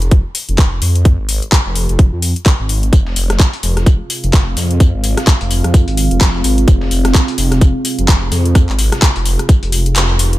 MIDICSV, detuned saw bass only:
0, 0, Header, 1, 2, 480
1, 0, Start_track
1, 0, Key_signature, -4, "minor"
1, 0, Tempo, 468750
1, 1077, Time_signature, 4, 2, 24, 8
1, 10636, End_track
2, 0, Start_track
2, 0, Title_t, "Detuned saw bass"
2, 0, Program_c, 0, 39
2, 0, Note_on_c, 0, 29, 96
2, 236, Note_off_c, 0, 29, 0
2, 498, Note_on_c, 0, 29, 94
2, 821, Note_off_c, 0, 29, 0
2, 836, Note_on_c, 0, 41, 95
2, 1195, Note_off_c, 0, 41, 0
2, 1217, Note_on_c, 0, 32, 94
2, 1435, Note_off_c, 0, 32, 0
2, 1698, Note_on_c, 0, 29, 94
2, 1915, Note_off_c, 0, 29, 0
2, 1938, Note_on_c, 0, 29, 94
2, 2156, Note_off_c, 0, 29, 0
2, 2178, Note_on_c, 0, 41, 96
2, 2396, Note_off_c, 0, 41, 0
2, 2658, Note_on_c, 0, 32, 93
2, 2981, Note_off_c, 0, 32, 0
2, 2997, Note_on_c, 0, 29, 94
2, 3221, Note_off_c, 0, 29, 0
2, 3236, Note_on_c, 0, 29, 95
2, 3461, Note_off_c, 0, 29, 0
2, 3716, Note_on_c, 0, 29, 94
2, 4075, Note_off_c, 0, 29, 0
2, 4336, Note_on_c, 0, 29, 91
2, 4660, Note_off_c, 0, 29, 0
2, 4677, Note_on_c, 0, 41, 104
2, 5036, Note_off_c, 0, 41, 0
2, 5059, Note_on_c, 0, 32, 93
2, 5276, Note_off_c, 0, 32, 0
2, 5538, Note_on_c, 0, 29, 90
2, 5756, Note_off_c, 0, 29, 0
2, 5779, Note_on_c, 0, 41, 93
2, 5996, Note_off_c, 0, 41, 0
2, 6017, Note_on_c, 0, 32, 96
2, 6235, Note_off_c, 0, 32, 0
2, 6257, Note_on_c, 0, 29, 98
2, 6581, Note_off_c, 0, 29, 0
2, 6595, Note_on_c, 0, 32, 100
2, 6820, Note_off_c, 0, 32, 0
2, 6837, Note_on_c, 0, 29, 95
2, 7061, Note_off_c, 0, 29, 0
2, 7076, Note_on_c, 0, 29, 93
2, 7301, Note_off_c, 0, 29, 0
2, 7555, Note_on_c, 0, 29, 99
2, 7915, Note_off_c, 0, 29, 0
2, 8177, Note_on_c, 0, 29, 96
2, 8501, Note_off_c, 0, 29, 0
2, 8516, Note_on_c, 0, 41, 100
2, 8875, Note_off_c, 0, 41, 0
2, 8898, Note_on_c, 0, 32, 93
2, 9115, Note_off_c, 0, 32, 0
2, 9377, Note_on_c, 0, 29, 98
2, 9595, Note_off_c, 0, 29, 0
2, 9857, Note_on_c, 0, 29, 98
2, 10181, Note_off_c, 0, 29, 0
2, 10196, Note_on_c, 0, 29, 98
2, 10636, Note_off_c, 0, 29, 0
2, 10636, End_track
0, 0, End_of_file